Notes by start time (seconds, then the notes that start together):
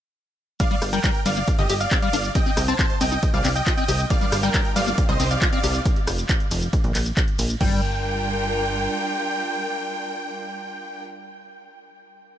0.60 G3 D5 F5, kick, closed hi-hat, ride, shaker
0.71 G3, closed hi-hat
0.82 G1, cross-stick, open hi-hat, ride, shaker
0.93 G3 A#4 G5, closed hi-hat, shaker
1.04 G3, kick, clap, closed hi-hat, ride, shaker
1.15 closed hi-hat
1.26 G1 G3 D5 F5, open hi-hat, ride, shaker
1.37 A#3, closed hi-hat, shaker
1.48 kick, closed hi-hat, ride, shaker
1.59 G1 D3 G4 D#5, closed hi-hat
1.69 G1 G4, open hi-hat, ride, shaker
1.80 D5 F5, closed hi-hat, shaker
1.91 C4, kick, clap, closed hi-hat, ride, shaker
2.02 G3 D5 F5, closed hi-hat
2.13 G1 D4, open hi-hat, ride, shaker
2.24 closed hi-hat, shaker
2.35 C4 D#5 G5, kick, closed hi-hat, ride, shaker
2.46 C4, closed hi-hat
2.57 C2, cross-stick, open hi-hat, ride, shaker
2.68 C4 C5 A5, closed hi-hat, shaker
2.79 C4, kick, clap, closed hi-hat, ride, shaker
2.90 closed hi-hat
3.01 C2 C4 D#5 G5, open hi-hat, ride, shaker
3.12 D#4, closed hi-hat, shaker
3.23 kick, closed hi-hat, ride, shaker
3.34 C2 G3 D5 F5, closed hi-hat
3.45 C2 C4, clap, open hi-hat, ride, shaker
3.56 D#5 G5, closed hi-hat, shaker
3.67 F4, kick, clap, closed hi-hat, ride, shaker
3.77 C4 D#5 G5, closed hi-hat
3.88 C2 G4, open hi-hat, ride, shaker
3.99 closed hi-hat, shaker
4.10 G3 D4 F4 A#4 D5 F5, kick, closed hi-hat, ride, shaker
4.21 G3, closed hi-hat
4.32 G1, cross-stick, open hi-hat, ride, shaker
4.43 G3 A#4 G5, closed hi-hat, shaker
4.54 G3, kick, clap, closed hi-hat, ride, shaker
4.65 closed hi-hat
4.76 G1 G3 D5 F5, open hi-hat, ride, shaker
4.87 A#3, closed hi-hat, shaker
4.98 C3 C4 D#4 G4, kick, closed hi-hat, ride, shaker
5.09 C2 G3 C5 D#5, closed hi-hat
5.20 C2 C4, open hi-hat, ride, shaker
5.31 D5 F5, closed hi-hat, shaker
5.42 F4, kick, clap, closed hi-hat, ride, shaker
5.53 C4 D5 F5, closed hi-hat
5.64 C2 G4, open hi-hat, ride, shaker
5.75 closed hi-hat, shaker
5.85 kick, closed hi-hat, ride, shaker
5.96 closed hi-hat
6.07 F1, cross-stick, open hi-hat, ride, shaker
6.18 closed hi-hat, shaker
6.29 kick, clap, closed hi-hat, ride, shaker
6.40 closed hi-hat
6.51 F1, open hi-hat, ride, shaker
6.62 closed hi-hat, shaker
6.73 kick, closed hi-hat, ride, shaker
6.84 A#1, closed hi-hat
6.95 A#1, clap, open hi-hat, ride, shaker
7.06 closed hi-hat, shaker
7.17 kick, clap, closed hi-hat, ride, shaker
7.28 closed hi-hat
7.39 A#1, open hi-hat, ride, shaker
7.50 closed hi-hat, shaker
7.61 G1 G3 D4 F4 A#4 G5, kick, crash